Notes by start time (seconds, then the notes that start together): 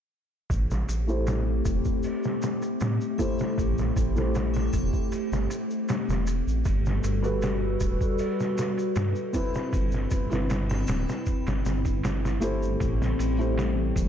0.50 A1 A3 C4 G4, kick, ride, shaker
0.71 snare, shaker
0.88 A1, ride, shaker
1.07 A3 E4 G4 C5, shaker
1.27 snare, ride, shaker
1.65 E1, kick, ride, shaker
1.84 kick, shaker
2.03 open hi-hat, shaker
2.23 snare, shaker
2.42 snare, ride, shaker
2.62 ride, shaker
2.80 A2, snare, ride, shaker
3.01 shaker
3.18 A3 E4 G4 C5, kick, ride, triangle, shaker
3.39 snare, shaker
3.58 A1, kick, ride, shaker
3.78 snare, shaker
3.96 A1, kick, ride, shaker
4.15 A3 E4 G4 C5, snare, shaker
4.35 snare, ride, shaker
4.54 snare, triangle, shaker
4.73 E1, kick, ride, triangle, shaker
4.93 kick, shaker
5.12 ride, shaker
5.32 G1, snare, shaker
5.50 ride, shaker
5.71 shaker
5.89 snare, ride, shaker
6.09 E1, snare, shaker
6.27 ride, shaker
6.47 A1, shaker
6.64 G1 G3 F#4 A4 B4, kick, ride, shaker
6.86 snare, shaker
7.04 G1, ride, shaker
7.22 G3 F#4 A4 B4, shaker
7.42 snare, ride, shaker
7.80 D1, kick, ride, shaker
8.01 kick, shaker
8.18 open hi-hat, shaker
8.40 snare, shaker
8.58 snare, ride, shaker
8.78 ride, shaker
8.96 G2, snare, ride, shaker
9.15 shaker
9.33 C4 E4 B4, kick, ride, triangle, shaker
9.54 snare, shaker
9.73 G1 C4 E4, kick, ride, shaker
9.92 snare, shaker
10.11 G1, kick, ride, shaker
10.30 C4 E4 B4, snare, shaker
10.50 snare, ride, shaker
10.70 snare, triangle, shaker
10.87 D1, snare, ride, triangle, shaker
11.09 snare, shaker
11.26 kick, ride, shaker
11.47 G1, snare, ride, shaker
11.65 G1, snare, shaker
11.85 kick, ride, shaker
12.03 snare, ride, shaker
12.25 snare, shaker
12.40 G1 A3 E4 G4 C5, ride, shaker
12.63 shaker
12.80 A1 G3 A3, kick, ride, shaker
13.02 snare, shaker
13.19 A1, ride, shaker
13.38 A3 E4 G4 C5, shaker
13.57 snare, ride, shaker
13.96 E1, kick, ride, shaker